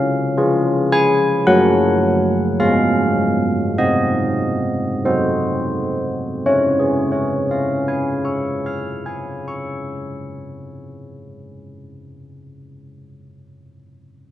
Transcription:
Already playing: C#4 F5
0.38 F4 G#4
0.92 G#5
1.47 F#3 C#4 A#4 F#5
2.60 G#3 F5
3.78 C4 D#5
5.05 C4 F#4 C5
6.46 C#4 C#5
6.80 G#4
7.12 C#5
7.51 F5
7.88 G#5
8.25 C#6
8.66 F6
9.06 G#5
9.48 C#6

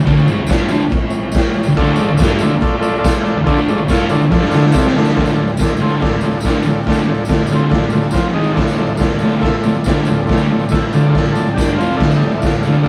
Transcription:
0.04 D2 D3, kick, tambourine, crash
0.17 tambourine
0.28 G#2 G#3, tambourine
0.37 D2
0.47 G2 G3, kick, tambourine, crash
0.51 snare
0.58 tambourine
0.68 D2 D3, tambourine
0.80 tambourine
0.90 kick, tambourine, crash
1.10 tambourine
1.32 kick, tambourine, crash
1.36 snare
1.42 tambourine
1.53 tambourine
1.63 D2, tambourine
1.73 F4 A4, tambourine, crash
1.77 D2 D3 D5, kick
1.84 tambourine
1.96 G#2 G#3 F4 A4 D5, tambourine
2.09 D2
2.17 G2 F4 A4 D5, kick, tambourine, crash
2.22 G3, snare
2.29 tambourine
2.39 D2 D3 F4 A4, tambourine
2.43 D5
2.50 tambourine
2.61 F4 A4 D5, kick, tambourine, crash
2.79 F4 A4 D5, tambourine
2.95 F4 A4, tambourine
3.00 D5
3.04 kick, snare, tambourine, crash
3.15 tambourine
3.22 F4 A4 D5, tambourine
3.37 D2
3.44 D2 F4 A4 D5, kick, tambourine, crash
3.48 D3
3.57 tambourine
3.68 G#2 G#3 F4 A4 D5, tambourine
3.77 D2, tambourine
3.88 G2 G3 F4 A4, kick, snare, tambourine, crash
3.92 F5
4.00 tambourine
4.09 D2 D3 F4 A4 D5, tambourine
4.21 tambourine
4.30 F2 F3 F4 A4 D5, kick, snare, tambourine
4.41 G2 G3, snare, tambourine
4.49 D2 F4 A4 D5, tambourine
4.54 D3, snare
4.62 tambourine
4.66 snare
4.72 C3 C4 F4 A4 D5, kick, tambourine
4.77 snare
4.84 snare, tambourine
4.95 D2 D3 F4 A4 D5, snare, tambourine
5.05 snare, tambourine
5.15 D2 A2 D3 F4 A4 D5, kick, snare, open hi-hat, tambourine
5.26 tambourine
5.35 D2 A2 F4 A4 D5, tambourine
5.47 tambourine
5.57 D2 A2 F4 A4, kick, open hi-hat, tambourine
5.61 D5, snare
5.68 tambourine
5.77 D2 A2, tambourine
5.81 D3 F4 A4 C5
5.88 tambourine
6.00 D2 A2 F4 A4 D5, kick, snare, open hi-hat, tambourine
6.21 D2 A2 F4 A4, tambourine
6.26 D5
6.31 tambourine
6.40 A4, tambourine
6.44 D2 A2 D3 F4 D5, kick, snare, open hi-hat
6.63 D2 A2 F4 A4 D5, tambourine
6.71 tambourine
6.83 D2 F4, kick, open hi-hat, tambourine
6.88 A2 D3 A4 D5, snare
6.93 tambourine
7.03 tambourine
7.07 D2 A2 F4 A4 D5
7.14 tambourine
7.25 D2 A4, tambourine
7.29 A2 F4 D5, kick, snare, open hi-hat
7.47 D2, tambourine
7.52 A2 D3 F4 A4 C5
7.69 D2 F4 A4 D5, kick, snare, open hi-hat, tambourine
7.74 A2
7.90 D2 F4 A4 D5, tambourine
7.94 A2
8.01 tambourine
8.11 F2 F4 C5 F5, kick, open hi-hat, tambourine
8.15 C3 F3, snare
8.32 G#2 D#3 D#4 G#4 D#5
8.37 G#3
8.44 tambourine
8.52 F4 A4 D5
8.56 D2 A2 D3, kick, snare, crash, tambourine
8.68 tambourine
8.77 D2 A2 F4 A4 D5, tambourine
8.87 tambourine
8.97 D2 F4 A4 D5, kick, snare, open hi-hat, tambourine
9.01 A2
9.19 D2 A2 F4 A4 D5, tambourine
9.24 D3
9.30 tambourine
9.39 F4 A4 E5, kick, open hi-hat, tambourine
9.44 D2 A2, snare
9.62 D2 F4 A4 D5, tambourine
9.66 A2
9.74 tambourine
9.84 D2 A2 D3 F4 A4 D5, kick, snare, open hi-hat, tambourine
9.97 tambourine
10.05 D2 A2 F4 A4, tambourine
10.11 D5
10.17 tambourine
10.25 F4 A4 D5, open hi-hat, tambourine
10.29 D2 A2 D3, kick, snare
10.37 tambourine
10.50 D2 A2 F4 A4 D5, tambourine
10.59 tambourine
10.69 D2 A2 F4 A4 E5, kick, open hi-hat, tambourine
10.73 snare
10.93 D2 A2 D3 F4 A4 D5, tambourine
11.03 tambourine
11.10 F4 A4 D5
11.15 D2 A2, kick, snare, open hi-hat, tambourine
11.25 tambourine
11.32 F4 A4 D5 A5, tambourine
11.37 D2 A2
11.53 G2 D4 G4 D5 G5
11.58 D3 G3, kick, snare, open hi-hat, tambourine
11.69 tambourine
11.76 F2 F4 C5 F5
11.80 C3 F3, tambourine
11.96 A4 D5 F5
12.00 D2 A2 D3, kick, snare, crash, tambourine
12.11 A4, tambourine
12.16 D5 G5
12.22 D2 A2, tambourine
12.32 tambourine
12.36 A4 D5 F5
12.42 D2 A2, kick, snare, open hi-hat, tambourine
12.60 A4 D5 F5, tambourine
12.65 D2 A2 D3
12.74 tambourine
12.82 A4 D5 F5, tambourine

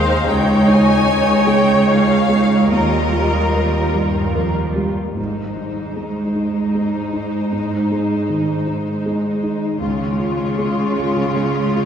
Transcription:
Already playing: D#2 G#3 D#4 C5 F5
0.28 C#2 C#5 G5
0.68 D#4 G#5
1.08 C#5
1.47 G#3 G5
1.88 C#5 F5
2.29 G#3
2.72 D#2 G3 F4 A#4 D#5
3.13 F4
3.54 A#4
3.95 G2 G3
4.35 F2 A#4
4.76 G2 G3
5.17 G#1 G#2 G#3 D#4 C5
5.57 D#4
5.96 G#3
6.36 D#4
6.75 G#3
7.13 D#4
7.52 G#2
7.92 G#3
8.30 D#3
8.67 D#4
9.06 G#3
9.43 D#4
9.80 C#2 C#3 G#3 F4 C#5
10.19 F4
10.58 G#3
10.98 F4
11.36 G#3
11.77 F4

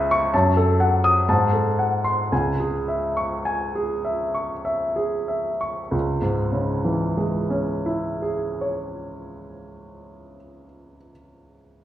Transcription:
Already playing: C#2 G#4 E5 G#5
0.11 C#6
0.34 F#2 A5
0.57 A4
0.80 F#5
1.04 D#6
1.29 G#2 A5
1.53 A4
1.79 F#5
2.04 C6
2.32 C#2 G#5
2.60 G#4
2.88 E5
3.17 C#6
3.45 G#5
3.75 G#4
4.05 E5
4.35 C#6
4.65 E5
4.96 G#4
5.28 E5
5.61 C#6
5.91 C#2
6.22 G#2
6.52 C#3
6.85 E3
7.17 G#3
7.50 C#4
7.86 E4
8.22 G#4
8.61 C#5

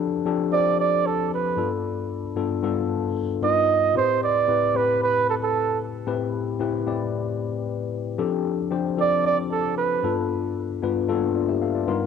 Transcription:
Already playing: F3 C4 D4 G4 A4
0.25 F3 C4 D4 G4 A4
0.52 F3 C4 D4 G4 C5 D5
0.80 D5
1.07 A4
1.34 B4
1.57 G2 B3 D4 F4 A4
2.36 G2 B3 D4 F4 A4
2.63 G2 B3 D4 F4 A4
3.42 G2 B3 D#4 F4 A#4 D#5
3.94 A2 C4 E4 G4 B4 C5
4.24 D5
4.47 A2 C4 E4 G4 B4
4.74 A2 C4 E4 G4 B4
5.03 B4
5.30 A4
5.43 A4
6.06 A2 C4 E4 G4 B4
6.59 A2 C4 E4 G4 B4
6.86 A2 C4 E4 G4 D5
8.18 F3 C4 D4 G4 A4
8.71 F3 C4 D4 G4 C5
8.97 F3 C4 D4 G4 A4 D5
9.26 D5
9.52 A4
9.78 B4
10.03 G2 B3 D4 F4 A4
10.82 G2 B3 D4 F4 B4
11.08 G2 A#3 D4 F4 A4
11.14 B3
11.36 F4 D5
11.48 G4 E5
11.62 A4 F5
11.75 F4 D5
11.87 G2 B3 D#4 F4 A#4

